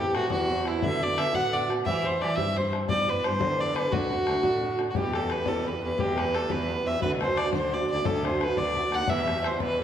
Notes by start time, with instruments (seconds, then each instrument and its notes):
Already playing: steel-string acoustic guitar E4, fiddle G4
0.00 steel-string acoustic guitar B3 C4, ocarina G4
0.09 fiddle G4
0.14 cello A2, steel-string acoustic guitar E3 B3 C4 E4, fiddle F#4, ocarina F#4, bodhran
0.30 cello E2, steel-string acoustic guitar A2 E3 B3 C4 E4, ocarina F#4, fiddle F#4, bodhran
0.49 steel-string acoustic guitar E3 B3 C4 E4, bodhran
0.65 steel-string acoustic guitar B3 E4, ocarina E4, fiddle E4, bodhran
0.69 steel-string acoustic guitar C4
0.81 cello D3, steel-string acoustic guitar D3 A3 B3 F#4, fiddle E5, ocarina F#5, bodhran
0.86 ocarina E5
1.01 steel-string acoustic guitar A3 B3 F#4, ocarina D5, fiddle D5, bodhran
1.16 steel-string acoustic guitar D3 A3 B3 F#4, cello D3, ocarina E5, fiddle E5, bodhran
1.33 cello A2, steel-string acoustic guitar D3 A3 B3 F#4, ocarina F#5, fiddle F#5, bodhran
1.52 steel-string acoustic guitar D3 A3 B3 F#4, fiddle D5, bodhran
1.69 steel-string acoustic guitar A3 B3 F#4, bodhran
1.85 steel-string acoustic guitar E3 G3 C4 G4, cello E3, fiddle E5, ocarina F#5, bodhran
1.91 ocarina E5
2.04 steel-string acoustic guitar G3 C4 G4, ocarina C5, fiddle C5, bodhran
2.20 steel-string acoustic guitar E3 G3 C4, cello E3, ocarina D5, fiddle D5, bodhran
2.24 steel-string acoustic guitar G4
2.35 cello G2, steel-string acoustic guitar G3 C4 G4, fiddle E5, ocarina E5, bodhran
2.40 steel-string acoustic guitar E3
2.55 steel-string acoustic guitar E3 G3, ocarina C5, fiddle C5, bodhran
2.59 steel-string acoustic guitar C4 G4
2.72 steel-string acoustic guitar G3 C4 G4, bodhran
2.88 steel-string acoustic guitar G2 D3 E3 G3 B3 G4, cello G2, ocarina D5, fiddle D5, bodhran
3.08 steel-string acoustic guitar E3 G3 B3 G4, fiddle B4, bodhran
3.23 cello G2, steel-string acoustic guitar E3 G3, fiddle C5, ocarina C5 C#5, bodhran
3.27 steel-string acoustic guitar B3 G4
3.40 steel-string acoustic guitar G2 D3 E3 G3 B3 G4, cello D3, bodhran
3.58 steel-string acoustic guitar E3 G3 B3, ocarina D5, fiddle D5, bodhran
3.63 steel-string acoustic guitar G4
3.75 steel-string acoustic guitar G3 B3 G4, fiddle B4, bodhran
3.80 steel-string acoustic guitar E3
3.91 cello D2, steel-string acoustic guitar D3 A3 D4 F#4, ocarina F#4, fiddle F#4, bodhran
4.11 steel-string acoustic guitar A3 D4 F#4
4.26 cello D2, steel-string acoustic guitar D3 A3 D4 F#4, bodhran
4.42 cello A2, steel-string acoustic guitar D3 A3 D4 F#4, bodhran
4.62 steel-string acoustic guitar D3 A3 D4 F#4, bodhran
4.77 steel-string acoustic guitar A3 D4 F#4, bodhran
4.90 fiddle F#4, ocarina G4
4.94 steel-string acoustic guitar E2 B2 E3 G3 B3 G4, cello E2, fiddle G4, bodhran
5.13 steel-string acoustic guitar E3 G3 B3, ocarina A4, fiddle A4, bodhran
5.17 steel-string acoustic guitar G4
5.23 steel-string acoustic guitar E3 G3 B3
5.30 fiddle B4, bodhran
5.38 steel-string acoustic guitar E3 G3 B3 G4
5.46 steel-string acoustic guitar E2 B2 E3 G3 B3 G4, cello E2, ocarina A4, fiddle A4, bodhran
5.65 steel-string acoustic guitar E3 G3 B3 G4, ocarina B4, fiddle B4, bodhran
5.73 steel-string acoustic guitar E3 G3 B3 G4
5.82 cello E2, ocarina B4, fiddle B4
5.88 steel-string acoustic guitar E3 G3 B3 G4
5.96 steel-string acoustic guitar E2 B2 E3 G3 B3 G4, cello E2, ocarina G4, fiddle G4, bodhran
6.15 steel-string acoustic guitar E3 G3 B3 G4, ocarina B4, fiddle B4, bodhran
6.24 steel-string acoustic guitar E3 G3 B3 G4
6.34 fiddle A4, bodhran
6.41 steel-string acoustic guitar E3 G3 B3 G4
6.48 steel-string acoustic guitar E2 B2 E3 G3 B3 G4, cello E2, ocarina B4, fiddle B4, bodhran
6.67 steel-string acoustic guitar E3 G3 B3 G4, bodhran
6.76 steel-string acoustic guitar E3 G3 B3 G4
6.86 cello E2, ocarina E5, fiddle E5
6.92 steel-string acoustic guitar E3 G3 B3 G4
7.00 cello D2, steel-string acoustic guitar D3 A3 D4 F#4, ocarina B4, fiddle B4, bodhran
7.19 steel-string acoustic guitar D3 A3 D4 F#4, fiddle C5, bodhran
7.27 steel-string acoustic guitar A3 D4 F#4
7.37 fiddle D5, ocarina D5, bodhran
7.44 steel-string acoustic guitar A3 D4 F#4
7.52 cello D2, steel-string acoustic guitar D3 A3 D4 F#4, fiddle C5, ocarina C5, bodhran
7.71 steel-string acoustic guitar D3 A3 D4 F#4, fiddle D5, ocarina D5, bodhran
7.79 steel-string acoustic guitar A3 D4 F#4
7.89 cello D2, fiddle D5, ocarina D5
7.95 steel-string acoustic guitar A3 D4 F#4
8.03 cello D2, steel-string acoustic guitar D3 A3 D4 F#4, fiddle A4, bodhran
8.07 ocarina A4
8.23 steel-string acoustic guitar D3 A3 D4 F#4, ocarina C5, fiddle C5, bodhran
8.31 steel-string acoustic guitar A3 D4 F#4
8.40 ocarina B4, fiddle B4, bodhran
8.47 steel-string acoustic guitar A3 D4 F#4
8.56 cello D2, steel-string acoustic guitar D3 A3 D4 F#4, ocarina D5, fiddle D5, bodhran
8.75 steel-string acoustic guitar D3 A3 D4 F#4, bodhran
8.84 steel-string acoustic guitar A3 D4 F#4
8.91 cello D#2, ocarina F#5, fiddle F#5, bodhran
8.99 steel-string acoustic guitar A3 D4 F#4
9.07 steel-string acoustic guitar E2 B2 E3 G3 B3 G4, cello E2, ocarina E5, fiddle E5, bodhran
9.27 steel-string acoustic guitar E3 G3 B3 G4, bodhran
9.35 steel-string acoustic guitar E3 G3 B3 G4
9.43 ocarina C5, fiddle C5, bodhran
9.51 steel-string acoustic guitar E3 G3 B3 G4
9.59 steel-string acoustic guitar E2 B2 E3 G3 B3 G4, cello E2, ocarina B4, fiddle B4, bodhran
9.79 steel-string acoustic guitar E3 G3, ocarina A4, bodhran